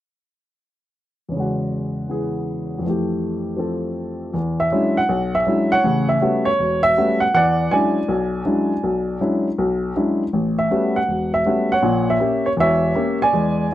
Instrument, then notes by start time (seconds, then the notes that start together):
grand piano
1.29 E2 C#3
1.36 G#3 F#4
2.08 E3 B3 G#4
2.78 F2 E3
2.86 A3 G4
3.57 F3 C4 A4
4.33 E2
4.60 E5
4.72 F#3 G#3 C#4 D4 E4
4.97 F#5
5.09 B1
5.35 E5
5.46 F#3 G#3 C#4 D4 E4
5.72 C#5 F#5
5.84 A1 C#3
6.09 E5
6.21 G3 A3 B3 C#4 F#4
6.45 C#5
6.59 E1
6.83 E5
6.97 G3 A3 B3 C#4 F#4
7.20 F#5
7.34 E2 D5 F#5
7.71 F#3 G#3 C#4 D4 E4 D5 G#5
8.08 B1
8.45 F#3 G#3 C#4 D4 E4
8.83 B1
9.20 F#3 G#3 C#4 D4 E4
9.58 B1
9.96 F#3 G#3 C#4 D4 E4
10.33 A1
10.59 E5
10.71 G3 A3 B3 C#4 F#4
10.96 F#5
11.08 E1
11.34 E5
11.46 G3 A3 B3 C#4 F#4
11.72 C#5 F#5
11.82 A#1 A#2
12.10 E5
12.20 A#3 C#4 G4
12.46 C#5
12.57 E1 E2 E5
12.61 C#5
12.95 A#3 C#4 G4
13.22 D5 G#5
13.33 E2 G#3